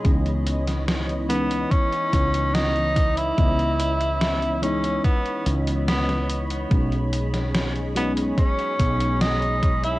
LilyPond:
<<
  \new Staff \with { instrumentName = "String machine" } { \time 4/4 \key cis \dorian \tempo 4 = 72 << { <cis'' b''>1~ | <cis'' b''>1~ | <cis'' b''>1 | } \\ { <e dis''>1~ | <e dis''>1 | <gis' dis''>1 | } >> }
  \new Staff \with { instrumentName = "Tenor saxophone" } { \time 4/4 \key cis \dorian r4. b8 cis'4 dis'8. e'16~ | e'4. cis'8 b8. r16 b8. r16 | r4. b8 cis'4 dis'8. e'16 | }
  \new Staff \with { instrumentName = "FM electric piano" } { \time 4/4 \key cis \dorian <e gis b cis' dis'>4. <e gis b cis' dis'>2~ <e gis b cis' dis'>8 | <e gis b cis' dis''>4. <e gis b cis' dis'>2~ <e gis b cis' dis'>8 | <fis gis b cis' dis'>4. <fis gis b cis' dis'>2~ <fis gis b cis' dis'>8 | }
  \new Staff \with { instrumentName = "Fretless electric bass" } { \clef bass \time 4/4 \key cis \dorian cis,2 r8 cis,4. | cis,2 r8 cis,4. | b,,2 r8 b,,4. | }
  \new DrumStaff \with { instrumentName = "Drums" } \drummode { \time 4/4 <hh bd>16 hh16 hh16 <hh sn>16 <hh sn>16 hh16 hh16 hh16 <hh bd>16 hh16 <hh bd>16 hh16 <hh sn>16 hh16 <hh bd>16 hh16 | <hh bd>16 hh16 hh16 hh16 <hh sn>16 hh16 hh16 hh16 <hh bd>16 hh16 hh16 hh16 <hh sn>16 <hh sn>16 hh16 hh16 | <hh bd>16 hh16 hh16 <hh sn>16 <hh sn>16 hh16 hh16 hh16 <hh bd>16 hh16 <hh bd>16 hh16 <hh sn>16 hh16 <hh bd>16 hh16 | }
>>